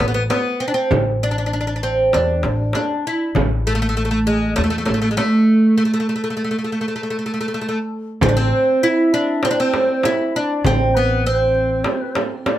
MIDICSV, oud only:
0, 0, Header, 1, 2, 480
1, 0, Start_track
1, 0, Tempo, 608519
1, 719, Time_signature, 4, 2, 24, 8
1, 9927, End_track
2, 0, Start_track
2, 0, Title_t, "Oud"
2, 0, Program_c, 0, 24
2, 61, Note_on_c, 0, 59, 57
2, 103, Note_off_c, 0, 59, 0
2, 113, Note_on_c, 0, 59, 69
2, 172, Note_off_c, 0, 59, 0
2, 237, Note_on_c, 0, 59, 82
2, 476, Note_on_c, 0, 60, 74
2, 485, Note_off_c, 0, 59, 0
2, 528, Note_off_c, 0, 60, 0
2, 534, Note_on_c, 0, 62, 61
2, 581, Note_off_c, 0, 62, 0
2, 584, Note_on_c, 0, 60, 73
2, 707, Note_off_c, 0, 60, 0
2, 972, Note_on_c, 0, 62, 77
2, 1026, Note_off_c, 0, 62, 0
2, 1035, Note_on_c, 0, 62, 49
2, 1080, Note_off_c, 0, 62, 0
2, 1090, Note_on_c, 0, 62, 61
2, 1144, Note_off_c, 0, 62, 0
2, 1154, Note_on_c, 0, 62, 58
2, 1200, Note_off_c, 0, 62, 0
2, 1210, Note_on_c, 0, 62, 61
2, 1258, Note_off_c, 0, 62, 0
2, 1267, Note_on_c, 0, 62, 53
2, 1309, Note_off_c, 0, 62, 0
2, 1319, Note_on_c, 0, 62, 61
2, 1376, Note_off_c, 0, 62, 0
2, 1387, Note_on_c, 0, 62, 49
2, 1441, Note_off_c, 0, 62, 0
2, 1445, Note_on_c, 0, 60, 67
2, 1686, Note_off_c, 0, 60, 0
2, 1689, Note_on_c, 0, 62, 77
2, 2160, Note_off_c, 0, 62, 0
2, 2170, Note_on_c, 0, 62, 79
2, 2413, Note_off_c, 0, 62, 0
2, 2422, Note_on_c, 0, 64, 77
2, 2636, Note_off_c, 0, 64, 0
2, 2894, Note_on_c, 0, 57, 92
2, 2949, Note_off_c, 0, 57, 0
2, 2958, Note_on_c, 0, 57, 70
2, 3003, Note_off_c, 0, 57, 0
2, 3013, Note_on_c, 0, 57, 72
2, 3059, Note_off_c, 0, 57, 0
2, 3068, Note_on_c, 0, 57, 63
2, 3121, Note_off_c, 0, 57, 0
2, 3130, Note_on_c, 0, 57, 74
2, 3185, Note_off_c, 0, 57, 0
2, 3194, Note_on_c, 0, 57, 61
2, 3232, Note_off_c, 0, 57, 0
2, 3241, Note_on_c, 0, 57, 69
2, 3299, Note_off_c, 0, 57, 0
2, 3367, Note_on_c, 0, 56, 82
2, 3593, Note_off_c, 0, 56, 0
2, 3596, Note_on_c, 0, 57, 84
2, 3648, Note_off_c, 0, 57, 0
2, 3657, Note_on_c, 0, 57, 60
2, 3700, Note_off_c, 0, 57, 0
2, 3710, Note_on_c, 0, 57, 69
2, 3761, Note_off_c, 0, 57, 0
2, 3771, Note_on_c, 0, 57, 57
2, 3820, Note_off_c, 0, 57, 0
2, 3829, Note_on_c, 0, 57, 65
2, 3887, Note_off_c, 0, 57, 0
2, 3896, Note_on_c, 0, 57, 59
2, 3947, Note_off_c, 0, 57, 0
2, 3957, Note_on_c, 0, 57, 67
2, 4018, Note_off_c, 0, 57, 0
2, 4030, Note_on_c, 0, 56, 59
2, 4075, Note_off_c, 0, 56, 0
2, 4078, Note_on_c, 0, 57, 87
2, 4546, Note_off_c, 0, 57, 0
2, 4555, Note_on_c, 0, 57, 71
2, 4607, Note_off_c, 0, 57, 0
2, 4616, Note_on_c, 0, 57, 52
2, 4675, Note_off_c, 0, 57, 0
2, 4683, Note_on_c, 0, 57, 63
2, 4723, Note_off_c, 0, 57, 0
2, 4732, Note_on_c, 0, 57, 52
2, 4791, Note_off_c, 0, 57, 0
2, 4804, Note_on_c, 0, 57, 54
2, 4847, Note_off_c, 0, 57, 0
2, 4856, Note_on_c, 0, 57, 51
2, 4912, Note_off_c, 0, 57, 0
2, 4920, Note_on_c, 0, 57, 55
2, 4963, Note_off_c, 0, 57, 0
2, 4972, Note_on_c, 0, 57, 49
2, 5013, Note_off_c, 0, 57, 0
2, 5022, Note_on_c, 0, 57, 56
2, 5073, Note_off_c, 0, 57, 0
2, 5083, Note_on_c, 0, 57, 48
2, 5125, Note_off_c, 0, 57, 0
2, 5135, Note_on_c, 0, 57, 52
2, 5185, Note_off_c, 0, 57, 0
2, 5194, Note_on_c, 0, 57, 41
2, 5231, Note_off_c, 0, 57, 0
2, 5241, Note_on_c, 0, 57, 48
2, 5293, Note_off_c, 0, 57, 0
2, 5303, Note_on_c, 0, 57, 47
2, 5362, Note_off_c, 0, 57, 0
2, 5372, Note_on_c, 0, 57, 53
2, 5417, Note_off_c, 0, 57, 0
2, 5427, Note_on_c, 0, 57, 45
2, 5478, Note_off_c, 0, 57, 0
2, 5488, Note_on_c, 0, 57, 52
2, 5537, Note_off_c, 0, 57, 0
2, 5547, Note_on_c, 0, 57, 46
2, 5594, Note_off_c, 0, 57, 0
2, 5604, Note_on_c, 0, 57, 54
2, 5660, Note_off_c, 0, 57, 0
2, 5669, Note_on_c, 0, 57, 42
2, 5717, Note_off_c, 0, 57, 0
2, 5726, Note_on_c, 0, 57, 52
2, 5778, Note_off_c, 0, 57, 0
2, 5788, Note_on_c, 0, 57, 45
2, 5833, Note_off_c, 0, 57, 0
2, 5842, Note_on_c, 0, 57, 60
2, 5891, Note_off_c, 0, 57, 0
2, 5900, Note_on_c, 0, 57, 51
2, 5940, Note_off_c, 0, 57, 0
2, 5949, Note_on_c, 0, 57, 61
2, 5997, Note_off_c, 0, 57, 0
2, 6006, Note_on_c, 0, 57, 55
2, 6053, Note_off_c, 0, 57, 0
2, 6063, Note_on_c, 0, 57, 58
2, 6132, Note_off_c, 0, 57, 0
2, 6489, Note_on_c, 0, 60, 86
2, 6533, Note_off_c, 0, 60, 0
2, 6536, Note_on_c, 0, 62, 69
2, 6592, Note_off_c, 0, 62, 0
2, 6600, Note_on_c, 0, 60, 83
2, 6967, Note_on_c, 0, 64, 94
2, 6977, Note_off_c, 0, 60, 0
2, 7205, Note_off_c, 0, 64, 0
2, 7208, Note_on_c, 0, 62, 87
2, 7428, Note_off_c, 0, 62, 0
2, 7452, Note_on_c, 0, 60, 87
2, 7496, Note_off_c, 0, 60, 0
2, 7499, Note_on_c, 0, 62, 80
2, 7553, Note_off_c, 0, 62, 0
2, 7571, Note_on_c, 0, 60, 88
2, 7929, Note_on_c, 0, 64, 97
2, 7942, Note_off_c, 0, 60, 0
2, 8170, Note_off_c, 0, 64, 0
2, 8173, Note_on_c, 0, 62, 85
2, 8409, Note_off_c, 0, 62, 0
2, 8412, Note_on_c, 0, 60, 86
2, 8651, Note_on_c, 0, 59, 82
2, 8653, Note_off_c, 0, 60, 0
2, 8882, Note_off_c, 0, 59, 0
2, 8885, Note_on_c, 0, 60, 79
2, 9927, Note_off_c, 0, 60, 0
2, 9927, End_track
0, 0, End_of_file